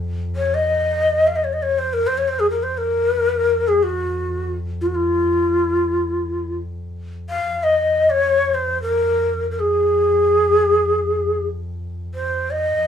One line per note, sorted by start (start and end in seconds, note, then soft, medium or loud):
0.00 2.14 F2 medium
0.36 0.56 C#5 medium
0.54 1.29 D#5 medium
1.27 1.37 F5 medium
1.36 1.46 D#5 medium
1.44 1.55 C#5 medium
1.53 1.64 D#5 medium
1.63 1.80 C#5 medium
1.79 1.95 C5 medium
1.93 2.08 A#4 medium
2.07 2.19 C5 medium
2.15 7.46 F2 medium
2.15 2.30 C#5 medium
2.28 2.41 C5 medium
2.40 2.50 G#4 medium
2.50 2.65 A#4 medium
2.63 2.79 C5 medium
2.78 3.69 A#4 medium
3.68 3.85 G#4 medium
3.83 4.54 F#4 medium
4.81 4.88 F4 medium
4.87 4.96 F#4 medium
4.95 6.56 F4 medium
7.30 7.65 F5 medium
7.47 12.76 F2 medium
7.63 8.12 D#5 medium
8.10 8.56 C#5 medium
8.55 8.81 C5 medium
8.82 9.49 A#4 medium
9.51 9.61 A#4 soft
9.60 11.45 G#4 medium
12.15 12.52 C5 medium
12.51 12.87 D#5 medium
12.77 12.87 F2 medium